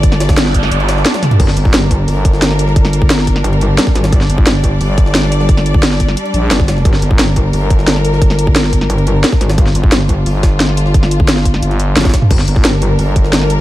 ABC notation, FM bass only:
X:1
M:4/4
L:1/8
Q:1/4=176
K:Gm
V:1 name="FM bass" clef=bass
G,,,4 G,,,2 z2 | z G,,, z2 G,,,4- | G,,,4 z4 | z G,,, z2 G,,,4- |
G,,,4 z B,,, z2 | z G,,, z2 G,,,4- | G,,,4 z4 | z G,,, z2 G,,,4- |
G,,,4 G,,,2 G,,, z | z G,,, z2 G,,,4 |]